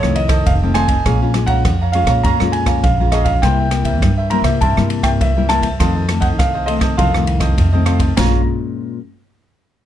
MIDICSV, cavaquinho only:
0, 0, Header, 1, 3, 480
1, 0, Start_track
1, 0, Key_signature, -5, "minor"
1, 0, Tempo, 592885
1, 859, Time_signature, 4, 2, 24, 8
1, 7979, End_track
2, 0, Start_track
2, 0, Title_t, "Cavaquinho"
2, 0, Program_c, 0, 24
2, 0, Note_on_c, 0, 65, 65
2, 0, Note_on_c, 0, 69, 76
2, 0, Note_on_c, 0, 72, 76
2, 0, Note_on_c, 0, 75, 77
2, 115, Note_off_c, 0, 65, 0
2, 118, Note_off_c, 0, 72, 0
2, 119, Note_off_c, 0, 69, 0
2, 119, Note_off_c, 0, 75, 0
2, 229, Note_on_c, 0, 75, 73
2, 236, Note_on_c, 0, 72, 61
2, 240, Note_on_c, 0, 69, 56
2, 474, Note_off_c, 0, 75, 0
2, 478, Note_off_c, 0, 72, 0
2, 480, Note_off_c, 0, 69, 0
2, 501, Note_on_c, 0, 75, 49
2, 511, Note_on_c, 0, 72, 41
2, 515, Note_on_c, 0, 69, 36
2, 596, Note_off_c, 0, 69, 0
2, 599, Note_off_c, 0, 72, 0
2, 600, Note_off_c, 0, 75, 0
2, 600, Note_on_c, 0, 65, 70
2, 606, Note_on_c, 0, 69, 71
2, 609, Note_on_c, 0, 72, 69
2, 610, Note_on_c, 0, 75, 68
2, 705, Note_off_c, 0, 75, 0
2, 707, Note_off_c, 0, 72, 0
2, 715, Note_on_c, 0, 75, 48
2, 716, Note_off_c, 0, 69, 0
2, 717, Note_on_c, 0, 72, 45
2, 720, Note_off_c, 0, 65, 0
2, 726, Note_on_c, 0, 69, 39
2, 837, Note_off_c, 0, 75, 0
2, 838, Note_off_c, 0, 72, 0
2, 842, Note_off_c, 0, 69, 0
2, 854, Note_on_c, 0, 68, 77
2, 858, Note_on_c, 0, 73, 72
2, 864, Note_on_c, 0, 77, 81
2, 865, Note_on_c, 0, 82, 81
2, 966, Note_off_c, 0, 68, 0
2, 969, Note_off_c, 0, 73, 0
2, 972, Note_off_c, 0, 77, 0
2, 972, Note_off_c, 0, 82, 0
2, 987, Note_on_c, 0, 82, 46
2, 993, Note_on_c, 0, 77, 46
2, 997, Note_on_c, 0, 73, 38
2, 1083, Note_off_c, 0, 73, 0
2, 1084, Note_off_c, 0, 77, 0
2, 1086, Note_off_c, 0, 82, 0
2, 1200, Note_on_c, 0, 82, 64
2, 1204, Note_on_c, 0, 77, 69
2, 1209, Note_on_c, 0, 73, 54
2, 1439, Note_off_c, 0, 82, 0
2, 1442, Note_off_c, 0, 77, 0
2, 1444, Note_off_c, 0, 73, 0
2, 1469, Note_on_c, 0, 82, 51
2, 1475, Note_on_c, 0, 77, 45
2, 1482, Note_on_c, 0, 73, 43
2, 1569, Note_off_c, 0, 73, 0
2, 1571, Note_off_c, 0, 77, 0
2, 1571, Note_on_c, 0, 68, 46
2, 1574, Note_off_c, 0, 82, 0
2, 1579, Note_on_c, 0, 73, 51
2, 1581, Note_on_c, 0, 77, 56
2, 1583, Note_on_c, 0, 82, 52
2, 1670, Note_off_c, 0, 82, 0
2, 1678, Note_off_c, 0, 77, 0
2, 1680, Note_on_c, 0, 82, 68
2, 1681, Note_off_c, 0, 73, 0
2, 1685, Note_off_c, 0, 68, 0
2, 1688, Note_on_c, 0, 77, 59
2, 1691, Note_on_c, 0, 73, 58
2, 1799, Note_off_c, 0, 82, 0
2, 1803, Note_off_c, 0, 77, 0
2, 1805, Note_off_c, 0, 73, 0
2, 1819, Note_on_c, 0, 68, 66
2, 1825, Note_on_c, 0, 73, 68
2, 1827, Note_on_c, 0, 77, 81
2, 1830, Note_on_c, 0, 82, 72
2, 2042, Note_off_c, 0, 68, 0
2, 2043, Note_off_c, 0, 73, 0
2, 2045, Note_off_c, 0, 77, 0
2, 2047, Note_off_c, 0, 82, 0
2, 2159, Note_on_c, 0, 82, 69
2, 2166, Note_on_c, 0, 77, 65
2, 2169, Note_on_c, 0, 73, 60
2, 2398, Note_off_c, 0, 82, 0
2, 2402, Note_off_c, 0, 77, 0
2, 2403, Note_off_c, 0, 73, 0
2, 2429, Note_on_c, 0, 82, 49
2, 2435, Note_on_c, 0, 77, 45
2, 2440, Note_on_c, 0, 73, 35
2, 2525, Note_off_c, 0, 73, 0
2, 2530, Note_off_c, 0, 77, 0
2, 2530, Note_on_c, 0, 68, 74
2, 2534, Note_off_c, 0, 82, 0
2, 2535, Note_on_c, 0, 73, 72
2, 2540, Note_on_c, 0, 77, 76
2, 2543, Note_on_c, 0, 82, 81
2, 2631, Note_off_c, 0, 82, 0
2, 2635, Note_off_c, 0, 77, 0
2, 2641, Note_off_c, 0, 73, 0
2, 2641, Note_on_c, 0, 82, 51
2, 2644, Note_off_c, 0, 68, 0
2, 2645, Note_on_c, 0, 77, 42
2, 2651, Note_on_c, 0, 73, 36
2, 2759, Note_off_c, 0, 82, 0
2, 2761, Note_off_c, 0, 77, 0
2, 2764, Note_off_c, 0, 73, 0
2, 2782, Note_on_c, 0, 64, 67
2, 2787, Note_on_c, 0, 70, 74
2, 2791, Note_on_c, 0, 72, 84
2, 2795, Note_on_c, 0, 76, 84
2, 2890, Note_off_c, 0, 64, 0
2, 2893, Note_off_c, 0, 70, 0
2, 2894, Note_off_c, 0, 72, 0
2, 2897, Note_off_c, 0, 76, 0
2, 2910, Note_on_c, 0, 76, 45
2, 2917, Note_on_c, 0, 72, 44
2, 2921, Note_on_c, 0, 70, 42
2, 3002, Note_off_c, 0, 70, 0
2, 3005, Note_off_c, 0, 72, 0
2, 3007, Note_off_c, 0, 76, 0
2, 3116, Note_on_c, 0, 76, 71
2, 3122, Note_on_c, 0, 72, 62
2, 3126, Note_on_c, 0, 70, 58
2, 3357, Note_off_c, 0, 76, 0
2, 3360, Note_off_c, 0, 72, 0
2, 3362, Note_off_c, 0, 70, 0
2, 3380, Note_on_c, 0, 76, 56
2, 3390, Note_on_c, 0, 72, 46
2, 3393, Note_on_c, 0, 70, 42
2, 3473, Note_off_c, 0, 70, 0
2, 3477, Note_off_c, 0, 72, 0
2, 3480, Note_off_c, 0, 76, 0
2, 3481, Note_on_c, 0, 64, 50
2, 3483, Note_on_c, 0, 70, 54
2, 3487, Note_on_c, 0, 72, 56
2, 3490, Note_on_c, 0, 76, 54
2, 3586, Note_off_c, 0, 76, 0
2, 3593, Note_off_c, 0, 72, 0
2, 3596, Note_on_c, 0, 76, 70
2, 3597, Note_off_c, 0, 70, 0
2, 3599, Note_off_c, 0, 64, 0
2, 3603, Note_on_c, 0, 72, 56
2, 3607, Note_on_c, 0, 70, 53
2, 3717, Note_off_c, 0, 76, 0
2, 3720, Note_off_c, 0, 72, 0
2, 3722, Note_off_c, 0, 70, 0
2, 3738, Note_on_c, 0, 64, 73
2, 3743, Note_on_c, 0, 70, 73
2, 3745, Note_on_c, 0, 72, 82
2, 3751, Note_on_c, 0, 76, 81
2, 3953, Note_off_c, 0, 64, 0
2, 3956, Note_off_c, 0, 70, 0
2, 3956, Note_off_c, 0, 72, 0
2, 3960, Note_off_c, 0, 76, 0
2, 4071, Note_on_c, 0, 76, 72
2, 4078, Note_on_c, 0, 72, 63
2, 4082, Note_on_c, 0, 70, 54
2, 4314, Note_off_c, 0, 76, 0
2, 4318, Note_off_c, 0, 72, 0
2, 4320, Note_off_c, 0, 70, 0
2, 4337, Note_on_c, 0, 76, 49
2, 4344, Note_on_c, 0, 72, 42
2, 4349, Note_on_c, 0, 70, 42
2, 4435, Note_off_c, 0, 70, 0
2, 4438, Note_off_c, 0, 72, 0
2, 4439, Note_on_c, 0, 64, 68
2, 4440, Note_off_c, 0, 76, 0
2, 4445, Note_on_c, 0, 70, 71
2, 4447, Note_on_c, 0, 72, 74
2, 4450, Note_on_c, 0, 76, 73
2, 4536, Note_off_c, 0, 76, 0
2, 4542, Note_off_c, 0, 72, 0
2, 4546, Note_on_c, 0, 76, 50
2, 4547, Note_off_c, 0, 70, 0
2, 4551, Note_on_c, 0, 72, 43
2, 4557, Note_on_c, 0, 70, 42
2, 4558, Note_off_c, 0, 64, 0
2, 4671, Note_off_c, 0, 76, 0
2, 4674, Note_off_c, 0, 72, 0
2, 4677, Note_off_c, 0, 70, 0
2, 4690, Note_on_c, 0, 65, 81
2, 4696, Note_on_c, 0, 69, 81
2, 4698, Note_on_c, 0, 72, 81
2, 4700, Note_on_c, 0, 75, 85
2, 4804, Note_off_c, 0, 65, 0
2, 4806, Note_off_c, 0, 69, 0
2, 4807, Note_off_c, 0, 72, 0
2, 4807, Note_off_c, 0, 75, 0
2, 4816, Note_on_c, 0, 75, 51
2, 4823, Note_on_c, 0, 72, 44
2, 4828, Note_on_c, 0, 69, 41
2, 4913, Note_off_c, 0, 69, 0
2, 4916, Note_off_c, 0, 72, 0
2, 4917, Note_off_c, 0, 75, 0
2, 5022, Note_on_c, 0, 75, 67
2, 5029, Note_on_c, 0, 72, 58
2, 5034, Note_on_c, 0, 69, 53
2, 5270, Note_off_c, 0, 75, 0
2, 5273, Note_off_c, 0, 72, 0
2, 5276, Note_off_c, 0, 69, 0
2, 5292, Note_on_c, 0, 75, 53
2, 5299, Note_on_c, 0, 72, 44
2, 5303, Note_on_c, 0, 69, 46
2, 5388, Note_off_c, 0, 69, 0
2, 5392, Note_off_c, 0, 72, 0
2, 5393, Note_on_c, 0, 65, 51
2, 5396, Note_off_c, 0, 75, 0
2, 5398, Note_on_c, 0, 69, 55
2, 5402, Note_on_c, 0, 72, 57
2, 5405, Note_on_c, 0, 75, 61
2, 5494, Note_off_c, 0, 75, 0
2, 5504, Note_off_c, 0, 72, 0
2, 5504, Note_on_c, 0, 75, 68
2, 5507, Note_off_c, 0, 69, 0
2, 5514, Note_on_c, 0, 72, 60
2, 5515, Note_off_c, 0, 65, 0
2, 5517, Note_on_c, 0, 69, 53
2, 5630, Note_off_c, 0, 75, 0
2, 5635, Note_off_c, 0, 72, 0
2, 5637, Note_off_c, 0, 69, 0
2, 5646, Note_on_c, 0, 65, 76
2, 5651, Note_on_c, 0, 69, 77
2, 5655, Note_on_c, 0, 72, 85
2, 5659, Note_on_c, 0, 75, 84
2, 5870, Note_off_c, 0, 65, 0
2, 5876, Note_off_c, 0, 69, 0
2, 5877, Note_off_c, 0, 75, 0
2, 5879, Note_off_c, 0, 72, 0
2, 5988, Note_on_c, 0, 75, 73
2, 5998, Note_on_c, 0, 72, 59
2, 6001, Note_on_c, 0, 69, 59
2, 6233, Note_off_c, 0, 75, 0
2, 6238, Note_off_c, 0, 72, 0
2, 6239, Note_off_c, 0, 69, 0
2, 6254, Note_on_c, 0, 75, 54
2, 6261, Note_on_c, 0, 72, 47
2, 6264, Note_on_c, 0, 69, 38
2, 6354, Note_off_c, 0, 69, 0
2, 6357, Note_off_c, 0, 72, 0
2, 6360, Note_off_c, 0, 75, 0
2, 6360, Note_on_c, 0, 65, 67
2, 6364, Note_on_c, 0, 69, 77
2, 6367, Note_on_c, 0, 72, 71
2, 6370, Note_on_c, 0, 75, 79
2, 6459, Note_off_c, 0, 75, 0
2, 6468, Note_off_c, 0, 72, 0
2, 6469, Note_on_c, 0, 75, 51
2, 6472, Note_off_c, 0, 69, 0
2, 6477, Note_on_c, 0, 72, 41
2, 6479, Note_off_c, 0, 65, 0
2, 6481, Note_on_c, 0, 69, 43
2, 6593, Note_off_c, 0, 75, 0
2, 6597, Note_off_c, 0, 72, 0
2, 6599, Note_off_c, 0, 69, 0
2, 6609, Note_on_c, 0, 68, 72
2, 6615, Note_on_c, 0, 73, 84
2, 6620, Note_on_c, 0, 77, 76
2, 6622, Note_on_c, 0, 82, 86
2, 6805, Note_off_c, 0, 68, 0
2, 6808, Note_off_c, 0, 73, 0
2, 6810, Note_off_c, 0, 77, 0
2, 6811, Note_off_c, 0, 82, 0
2, 7979, End_track
3, 0, Start_track
3, 0, Title_t, "Muted cavaquinho strokes"
3, 124, Note_on_c, 9, 29, 38
3, 205, Note_off_c, 9, 29, 0
3, 1091, Note_on_c, 9, 29, 34
3, 1172, Note_off_c, 9, 29, 0
3, 3011, Note_on_c, 9, 29, 37
3, 3092, Note_off_c, 9, 29, 0
3, 3962, Note_on_c, 9, 29, 39
3, 4043, Note_off_c, 9, 29, 0
3, 4920, Note_on_c, 9, 29, 40
3, 5001, Note_off_c, 9, 29, 0
3, 5880, Note_on_c, 9, 29, 36
3, 5961, Note_off_c, 9, 29, 0
3, 7979, End_track
0, 0, End_of_file